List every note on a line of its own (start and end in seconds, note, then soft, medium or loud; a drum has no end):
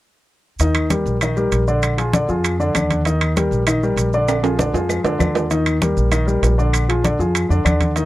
0.59 1.03 D#2 medium
0.59 0.86 D#3 medium
0.59 0.86 D#4 medium
0.59 0.86 D#5 medium
0.59 high conga soft
0.59 high timbale medium
0.59 maracas medium
0.75 high conga soft
0.75 high timbale medium
0.75 claves medium
0.75 maracas soft
0.90 1.16 G3 medium
0.90 1.16 G4 medium
0.90 1.16 A#4 medium
0.90 high conga medium
0.90 high timbale medium
0.90 maracas medium
1.06 1.49 A#1 medium
1.06 high conga soft
1.06 maracas soft
1.21 1.34 D#3 medium
1.21 1.34 D#4 medium
1.21 1.35 D#5 medium
1.21 high conga soft
1.21 high timbale medium
1.21 claves medium
1.21 maracas medium
1.37 1.62 G3 medium
1.37 1.62 G4 medium
1.37 1.63 A#4 medium
1.37 high conga soft
1.37 maracas soft
1.52 2.23 A#1 medium
1.52 high conga soft
1.52 high timbale medium
1.52 maracas medium
1.68 1.93 D3 medium
1.68 1.93 D4 medium
1.68 1.93 D5 medium
1.68 high conga soft
1.68 maracas soft
1.83 high conga soft
1.83 high timbale medium
1.83 claves medium
1.83 maracas medium
1.98 2.11 F3 medium
1.98 2.11 F4 medium
1.98 2.11 G#4 medium
1.98 high conga soft
1.98 high timbale medium
1.98 maracas soft
2.13 2.26 D3 medium
2.13 2.26 D4 medium
2.13 2.26 D5 medium
2.13 high conga medium
2.13 high timbale medium
2.13 maracas medium
2.29 2.72 F2 medium
2.29 2.54 F3 medium
2.29 2.54 F4 medium
2.29 2.54 G#4 medium
2.29 high conga soft
2.29 maracas soft
2.44 high conga soft
2.44 high timbale medium
2.44 claves medium
2.44 maracas medium
2.60 2.72 D3 medium
2.60 2.73 D4 medium
2.60 2.73 D5 medium
2.60 high conga soft
2.60 maracas soft
2.75 3.46 D#2 medium
2.75 3.00 D3 medium
2.75 3.00 D4 medium
2.75 3.00 D5 medium
2.75 high conga medium
2.75 high timbale medium
2.75 claves medium
2.75 maracas medium
2.91 high conga medium
2.91 high timbale medium
2.91 maracas soft
3.05 3.31 D#3 medium
3.05 3.31 D#4 medium
3.05 3.31 D#5 medium
3.05 high conga soft
3.05 high timbale medium
3.05 maracas medium
3.21 high conga soft
3.21 high timbale medium
3.21 claves medium
3.21 maracas soft
3.36 3.61 G3 medium
3.36 3.62 G4 medium
3.36 3.62 A#4 medium
3.36 high conga medium
3.36 high timbale medium
3.36 maracas medium
3.51 3.94 A#1 medium
3.51 high conga soft
3.51 maracas soft
3.67 3.79 D#3 medium
3.67 3.80 D#4 medium
3.67 3.80 D#5 medium
3.67 high conga soft
3.67 high timbale medium
3.67 claves medium
3.67 maracas medium
3.83 4.08 G3 medium
3.83 4.08 G4 medium
3.83 4.08 A#4 medium
3.83 high conga soft
3.83 maracas soft
3.96 4.68 A#1 medium
3.96 high conga soft
3.96 high timbale medium
3.96 maracas medium
4.13 4.39 D3 medium
4.13 4.39 D4 medium
4.13 4.39 D5 medium
4.13 high conga soft
4.13 maracas soft
4.28 high conga soft
4.28 high timbale medium
4.28 claves medium
4.28 maracas medium
4.43 4.56 F3 medium
4.43 4.56 F4 medium
4.43 4.56 G#4 medium
4.43 high conga soft
4.43 high timbale medium
4.43 maracas soft
4.59 4.72 D3 medium
4.59 4.72 D4 medium
4.59 4.72 D5 medium
4.59 high conga medium
4.59 low timbale medium
4.59 maracas medium
4.73 5.03 F2 medium
4.73 4.99 F3 medium
4.73 5.00 F4 medium
4.73 4.99 G#4 medium
4.73 high conga soft
4.73 low timbale medium
4.73 maracas soft
4.89 high conga soft
4.89 low timbale medium
4.89 claves medium
4.89 maracas medium
5.04 5.19 F2 medium
5.04 5.17 D3 medium
5.04 5.17 D4 medium
5.04 5.18 D5 medium
5.04 high conga soft
5.04 low timbale medium
5.04 maracas soft
5.19 5.91 D#2 medium
5.19 5.45 D3 medium
5.19 5.45 D4 medium
5.19 5.45 D5 medium
5.19 high conga medium
5.19 low timbale medium
5.19 claves medium
5.19 maracas medium
5.35 low timbale medium
5.35 maracas soft
5.51 5.76 D#3 medium
5.51 5.76 D#4 medium
5.51 5.76 D#5 medium
5.51 high conga soft
5.51 high timbale medium
5.51 maracas medium
5.66 high conga soft
5.66 high timbale medium
5.66 claves medium
5.66 maracas soft
5.82 6.07 G3 medium
5.82 6.07 G4 medium
5.82 6.07 A#4 medium
5.82 high conga medium
5.82 high timbale medium
5.82 maracas medium
5.97 6.40 A#1 medium
5.97 high conga soft
5.97 maracas soft
6.11 6.24 D#3 medium
6.11 6.25 D#4 medium
6.11 6.25 D#5 medium
6.11 high conga soft
6.11 high timbale medium
6.11 claves medium
6.11 maracas medium
6.26 6.52 G3 medium
6.26 6.53 G4 medium
6.26 6.53 A#4 medium
6.26 high conga soft
6.26 maracas soft
6.42 7.14 A#1 medium
6.42 high conga soft
6.42 high timbale medium
6.42 low timbale medium
6.42 maracas medium
6.58 6.83 D3 medium
6.58 6.83 D4 medium
6.58 6.84 D5 medium
6.58 high conga soft
6.58 maracas soft
6.73 high conga soft
6.73 high timbale medium
6.73 claves medium
6.73 maracas medium
6.88 7.01 F3 medium
6.88 7.02 F4 medium
6.88 7.02 G#4 medium
6.88 high conga soft
6.88 high timbale medium
6.88 maracas soft
7.04 7.17 D3 medium
7.04 7.17 D4 medium
7.04 7.17 D5 medium
7.04 high conga medium
7.04 high timbale medium
7.04 maracas medium
7.19 7.48 F2 medium
7.19 7.45 F3 medium
7.19 7.45 F4 medium
7.19 7.45 G#4 medium
7.19 high conga soft
7.19 maracas soft
7.35 high conga soft
7.35 high timbale medium
7.35 claves medium
7.35 maracas medium
7.49 7.64 F2 medium
7.49 7.62 D3 medium
7.49 7.63 D4 medium
7.49 7.63 D5 medium
7.49 high conga soft
7.49 maracas soft
7.64 8.05 D#2 medium
7.64 7.90 D3 medium
7.64 7.90 D4 medium
7.64 7.90 D5 medium
7.64 high conga medium
7.64 high timbale medium
7.64 claves medium
7.64 maracas medium
7.81 high conga medium
7.81 high timbale medium
7.81 maracas soft
7.96 8.05 D#3 medium
7.96 8.05 D#4 medium
7.96 8.05 D#5 medium
7.96 high conga soft
7.96 high timbale medium
7.96 maracas medium